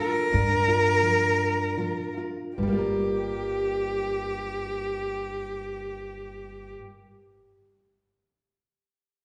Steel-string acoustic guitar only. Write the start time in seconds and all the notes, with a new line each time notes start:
Already playing: F3 D4
0.00 F4
0.32 G2 D4
0.68 F4
1.03 F3
1.77 F3 F4
2.17 F4
2.58 G2
2.63 G3
2.68 A#3
2.72 F4
2.78 A#4